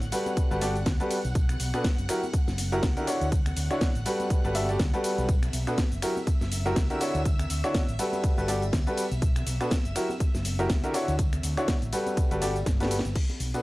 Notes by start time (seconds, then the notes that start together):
Already playing: F#5 F#6
0.02 A1, closed hi-hat, tambourine, shaker
0.12 G3 F#4 G4 A4 B4, open hi-hat, ride, tambourine, shaker
0.26 closed hi-hat, tambourine, high conga, shaker
0.37 kick, closed hi-hat, tambourine, shaker
0.51 G1 G3 F#4 G4 A4 B4, tambourine, shaker
0.61 G3 F#4 G4 A4 D5, open hi-hat, ride, tambourine, high conga, shaker
0.75 closed hi-hat, tambourine, shaker
0.86 D2, kick, snare, closed hi-hat, tambourine, shaker
1.00 G3 F#4 G4 A4 B4, closed hi-hat, tambourine, high conga, shaker
1.10 open hi-hat, ride, tambourine, shaker
1.25 B1, closed hi-hat, tambourine, shaker
1.35 kick, closed hi-hat, tambourine, shaker
1.49 finger snap, closed hi-hat, tambourine, high conga, shaker
1.60 B1, open hi-hat, ride, tambourine, shaker
1.74 B2 D4 F#4 A4 B4, finger snap, closed hi-hat, tambourine, shaker
1.84 kick, snare, closed hi-hat, tambourine, high conga, shaker
1.98 F#1, closed hi-hat, tambourine, shaker
2.09 F#3 E4 F#4 G4 A#4, finger snap, open hi-hat, ride, tambourine, shaker
2.23 tambourine, high conga, shaker
2.34 kick, closed hi-hat, tambourine, shaker
2.48 F#1, snare, tambourine, shaker
2.58 open hi-hat, ride, tambourine, high conga, shaker
2.72 F#3 E4 F#4 G4 A#4, tambourine, shaker
2.83 C#2, kick, snare, closed hi-hat, tambourine, shaker
2.97 D3 E4 F#4 G4 A#4, closed hi-hat, tambourine, high conga, shaker
3.07 D3 D4 E4 F#4 C#5, open hi-hat, ride, tambourine, shaker
3.21 D2, closed hi-hat, tambourine, shaker
3.32 kick, closed hi-hat, tambourine, shaker
3.46 finger snap, closed hi-hat, tambourine, high conga, shaker
3.56 D2, open hi-hat, ride, tambourine, shaker
3.70 D3 D4 E4 F#4 C#5, finger snap, closed hi-hat, tambourine, shaker
3.81 kick, snare, closed hi-hat, tambourine, high conga, shaker
3.95 A1, closed hi-hat, tambourine, shaker
4.05 G3 F#4 G4 A4 B4, open hi-hat, ride, tambourine, shaker
4.20 closed hi-hat, tambourine, high conga, shaker
4.30 kick, closed hi-hat, tambourine, shaker
4.44 G1 G3 F#4 G4 A4 B4, tambourine, shaker
4.55 G3 F#4 G4 A4 E5, open hi-hat, ride, tambourine, high conga, shaker
4.69 G3 F#4 G4 A4 D5, closed hi-hat, tambourine, shaker
4.79 D2, kick, snare, closed hi-hat, tambourine, shaker
4.93 G3 F#4 G4 A4 B4, closed hi-hat, tambourine, high conga, shaker
5.04 open hi-hat, ride, tambourine, shaker
5.18 B1, closed hi-hat, tambourine, shaker
5.29 E5 E6, kick, closed hi-hat, tambourine, shaker
5.42 finger snap, closed hi-hat, tambourine, high conga, shaker
5.53 B1, open hi-hat, ride, tambourine, shaker
5.67 B2 D4 F#4 A4 B4, finger snap, closed hi-hat, tambourine, shaker
5.78 kick, snare, closed hi-hat, tambourine, high conga, shaker
5.92 F#1, closed hi-hat, tambourine, shaker
6.02 F#3 E4 F#4 G4 A#4, finger snap, open hi-hat, ride, tambourine, shaker
6.17 tambourine, high conga, shaker
6.27 kick, closed hi-hat, tambourine, shaker
6.41 F#1, snare, tambourine, shaker
6.52 open hi-hat, ride, tambourine, high conga, shaker
6.65 F#3 E4 F#4 G4 A#4, closed hi-hat, tambourine, shaker
6.76 C#2, kick, snare, closed hi-hat, tambourine, shaker
6.90 D3 E4 F#4 G4 A#4, closed hi-hat, tambourine, high conga, shaker
7.01 D3 D4 E4 F#4 C#5, open hi-hat, ride, tambourine, shaker
7.15 D2, closed hi-hat, tambourine, shaker
7.25 kick, closed hi-hat, tambourine, shaker
7.39 finger snap, closed hi-hat, tambourine, high conga, shaker
7.50 D2, open hi-hat, ride, tambourine, shaker
7.64 D3 D4 E4 F#4 C#5, finger snap, closed hi-hat, tambourine, shaker
7.74 kick, snare, closed hi-hat, tambourine, high conga, shaker
7.88 A1, closed hi-hat, tambourine, shaker
7.99 G3 F#4 G4 A4 B4, open hi-hat, ride, tambourine, shaker
8.13 closed hi-hat, tambourine, high conga, shaker
8.24 kick, closed hi-hat, tambourine, shaker
8.38 G1 G3 F#4 G4 A4 B4, tambourine, shaker
8.48 G3 F#4 G4 A4 D5, open hi-hat, ride, tambourine, high conga, shaker
8.62 closed hi-hat, tambourine, shaker
8.73 D2, kick, snare, closed hi-hat, tambourine, shaker
8.87 G3 F#4 G4 A4 B4, closed hi-hat, tambourine, high conga, shaker
8.97 open hi-hat, ride, tambourine, shaker
9.11 B1, closed hi-hat, tambourine, shaker
9.22 kick, closed hi-hat, tambourine, shaker
9.36 finger snap, closed hi-hat, tambourine, high conga, shaker
9.47 B1, open hi-hat, ride, tambourine, shaker
9.61 B2 D4 F#4 A4 B4, finger snap, closed hi-hat, tambourine, shaker
9.70 kick, snare, closed hi-hat, tambourine, high conga, shaker
9.85 F#1, closed hi-hat, tambourine, shaker
9.96 F#3 E4 F#4 G4 A#4, finger snap, open hi-hat, ride, tambourine, shaker
10.10 tambourine, high conga, shaker
10.20 kick, closed hi-hat, tambourine, shaker
10.34 F#1, snare, tambourine, shaker
10.45 open hi-hat, ride, tambourine, high conga, shaker
10.59 F#3 E4 F#4 G4 A#4, closed hi-hat, tambourine, shaker
10.70 C#2, kick, snare, closed hi-hat, tambourine, shaker
10.83 D3 E4 F#4 G4 A#4, closed hi-hat, tambourine, high conga, shaker
10.94 D3 D4 E4 F#4 C#5, open hi-hat, ride, tambourine, shaker
11.08 D2, closed hi-hat, tambourine, shaker
11.19 kick, closed hi-hat, tambourine, shaker
11.33 finger snap, closed hi-hat, tambourine, high conga, shaker
11.43 D2, open hi-hat, ride, tambourine, shaker
11.57 D3 D4 E4 F#4 C#5, finger snap, closed hi-hat, tambourine, shaker
11.68 kick, snare, closed hi-hat, tambourine, high conga, shaker
11.82 A1, closed hi-hat, tambourine, shaker
11.92 G3 F#4 G4 A4 B4, open hi-hat, ride, tambourine, shaker
12.06 closed hi-hat, tambourine, high conga, shaker
12.17 kick, closed hi-hat, tambourine, shaker
12.31 G1 G3 F#4 G4 A4 B4, closed hi-hat, tambourine, shaker
12.42 G3 F#4 G4 A4 D5, open hi-hat, ride, tambourine, high conga, shaker
12.56 closed hi-hat, tambourine, shaker
12.66 G1, kick, snare, closed hi-hat, tambourine, shaker
12.80 G3 F#4 G4 A4 B4, snare, closed hi-hat, tambourine, high conga, shaker
12.91 open hi-hat, ride, tambourine, shaker
12.99 snare
13.05 G1, closed hi-hat, tambourine, shaker
13.15 kick, closed hi-hat, crash, tambourine, shaker
13.29 closed hi-hat, tambourine, high conga
13.40 B1, open hi-hat, shaker
13.54 B2 D4 F#4 A4 B4, closed hi-hat, tambourine, shaker